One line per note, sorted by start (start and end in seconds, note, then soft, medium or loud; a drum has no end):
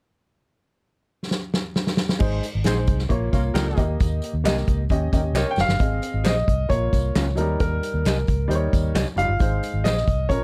1.31 snare medium
1.54 snare medium
1.76 snare medium
1.87 snare medium
1.97 snare medium
2.09 snare medium
2.19 2.39 G#1 loud
2.19 2.43 G#3 medium
2.19 2.44 D#4 medium
2.19 2.44 C5 medium
2.19 kick loud
2.19 crash medium
2.19 tambourine medium
2.43 closed hi-hat medium
2.43 tambourine medium
2.55 2.64 G#1 medium
2.64 2.88 A#1 medium
2.64 3.00 G#3 medium
2.64 3.00 D#4 medium
2.64 2.76 D#4 medium
2.64 2.76 G#4 medium
2.64 3.01 C5 medium
2.64 2.76 C5 medium
2.64 snare medium
2.64 clap medium
2.64 closed hi-hat medium
2.64 tambourine medium
2.87 3.06 C2 medium
2.87 kick loud
2.87 closed hi-hat medium
2.87 tambourine soft
2.99 snare soft
3.09 3.29 A#1 loud
3.09 3.28 A#3 medium
3.09 3.28 F4 medium
3.09 3.29 C#5 loud
3.09 kick medium
3.09 closed hi-hat medium
3.32 3.51 C2 medium
3.32 3.68 A#3 medium
3.32 3.42 C#4 medium
3.32 3.42 F4 medium
3.32 3.68 F4 medium
3.32 3.42 A#4 medium
3.32 3.69 C#5 medium
3.32 kick medium
3.32 closed hi-hat medium
3.32 tambourine medium
3.54 3.73 C#2 loud
3.54 3.87 D#4 medium
3.54 3.66 F4 medium
3.54 3.87 G4 loud
3.54 3.87 A#4 loud
3.54 3.66 A#4 medium
3.54 3.66 C#5 medium
3.54 snare loud
3.54 clap medium
3.54 closed hi-hat medium
3.54 tambourine medium
3.76 3.96 D#2 loud
3.76 4.31 A#3 medium
3.76 4.31 G4 medium
3.76 4.32 D#5 medium
3.76 kick medium
3.76 closed hi-hat medium
3.76 tambourine soft
4.00 4.19 D#2 loud
4.00 kick loud
4.00 closed hi-hat medium
4.00 tambourine medium
4.22 closed hi-hat medium
4.22 tambourine medium
4.34 4.43 D#2 medium
4.44 4.63 C2 medium
4.44 4.79 A#3 medium
4.44 4.55 G4 medium
4.44 4.80 G4 medium
4.44 4.56 A#4 medium
4.44 4.56 D#5 medium
4.44 4.80 D#5 medium
4.44 snare loud
4.44 clap medium
4.44 closed hi-hat medium
4.44 tambourine medium
4.57 snare soft
4.67 4.86 C#2 medium
4.67 kick medium
4.67 closed hi-hat medium
4.67 tambourine soft
4.89 5.08 D#2 loud
4.89 5.08 C#4 medium
4.89 5.08 G4 medium
4.89 5.09 D#5 medium
4.89 kick medium
4.89 closed hi-hat medium
4.89 tambourine soft
5.12 5.31 D#2 medium
5.12 5.47 C#4 medium
5.12 5.22 D#4 medium
5.12 5.22 G4 medium
5.12 5.48 G4 medium
5.12 5.22 A#4 medium
5.12 5.48 D#5 medium
5.12 kick medium
5.12 closed hi-hat medium
5.12 tambourine medium
5.33 5.43 C2 medium
5.33 5.45 G4 medium
5.33 5.67 G4 medium
5.33 5.67 A#4 medium
5.33 5.45 C#5 medium
5.33 5.67 C#5 loud
5.33 5.46 D#5 medium
5.33 snare medium
5.33 clap medium
5.33 tambourine loud
5.51 5.58 G5 medium
5.56 5.66 F#1 medium
5.56 snare medium
5.56 tambourine medium
5.61 6.28 F5 loud
5.68 5.78 G1 medium
5.68 snare medium
5.79 5.98 G#1 medium
5.79 6.26 C4 medium
5.79 6.26 G#4 medium
5.79 6.27 D#5 medium
5.79 kick loud
5.79 closed hi-hat medium
5.79 tambourine medium
6.02 closed hi-hat medium
6.02 tambourine soft
6.14 6.23 G#1 medium
6.24 6.44 A#1 medium
6.24 6.35 G#4 medium
6.24 6.35 C5 medium
6.24 6.35 D#5 medium
6.24 6.72 D#5 medium
6.24 snare loud
6.24 clap medium
6.24 closed hi-hat medium
6.24 tambourine medium
6.47 6.66 C2 medium
6.47 kick medium
6.47 closed hi-hat medium
6.69 6.88 A#1 loud
6.69 7.23 A#3 medium
6.69 7.23 F4 medium
6.69 7.62 C#5 medium
6.69 7.24 C#5 medium
6.69 kick medium
6.69 closed hi-hat medium
6.69 tambourine soft
6.92 7.11 C2 medium
6.92 kick medium
6.92 closed hi-hat medium
6.92 tambourine medium
7.15 7.33 C#2 medium
7.15 7.26 C#4 medium
7.15 7.26 F4 medium
7.15 7.26 A#4 medium
7.15 snare loud
7.15 clap medium
7.15 closed hi-hat medium
7.15 tambourine medium
7.35 7.56 D#2 medium
7.35 7.42 F#3 medium
7.35 8.09 D#4 medium
7.35 8.09 A#4 medium
7.35 closed hi-hat medium
7.35 tambourine soft
7.41 8.11 G3 medium
7.60 7.78 D#2 medium
7.60 8.91 A#4 medium
7.60 kick loud
7.60 closed hi-hat medium
7.60 tambourine medium
7.83 closed hi-hat medium
7.83 tambourine soft
7.94 8.03 D#2 medium
8.05 8.24 C2 medium
8.05 8.16 G4 medium
8.05 8.16 A#4 medium
8.05 8.16 D#5 medium
8.05 snare loud
8.05 clap medium
8.05 closed hi-hat medium
8.05 tambourine medium
8.27 8.46 C#2 medium
8.27 kick medium
8.27 closed hi-hat medium
8.27 tambourine soft
8.48 8.68 D#2 loud
8.48 9.03 G3 medium
8.48 9.03 D#4 medium
8.48 8.55 C5 medium
8.48 closed hi-hat medium
8.48 tambourine soft
8.55 9.06 C#5 loud
8.73 8.91 D#2 medium
8.73 kick medium
8.73 closed hi-hat medium
8.73 tambourine medium
8.95 9.04 C2 medium
8.95 9.05 G4 medium
8.95 9.05 C#5 medium
8.95 9.06 D#5 medium
8.95 snare loud
8.95 clap medium
8.95 closed hi-hat medium
8.95 tambourine medium
9.16 9.26 F#1 medium
9.16 9.28 G3 medium
9.16 9.29 D#4 medium
9.16 9.29 F4 medium
9.16 9.87 F5 loud
9.16 closed hi-hat medium
9.16 tambourine soft
9.29 9.38 G1 medium
9.39 9.58 G#1 loud
9.39 9.86 G#3 medium
9.39 9.86 D#4 medium
9.39 9.87 C5 medium
9.39 kick loud
9.39 closed hi-hat medium
9.39 tambourine medium
9.63 closed hi-hat medium
9.63 tambourine soft
9.74 9.83 G#1 medium
9.84 10.04 A#1 medium
9.84 9.95 G#4 medium
9.84 9.95 C5 medium
9.84 10.31 D#5 medium
9.84 9.95 D#5 medium
9.84 snare loud
9.84 clap medium
9.84 closed hi-hat medium
9.84 tambourine medium
9.97 snare soft
10.07 10.29 C2 medium
10.07 kick medium
10.07 closed hi-hat medium
10.07 tambourine soft
10.29 10.44 A#1 medium
10.29 10.44 F3 medium
10.29 10.44 C#4 medium
10.29 10.44 A#4 medium
10.29 10.44 C#5 medium
10.29 kick medium
10.29 closed hi-hat medium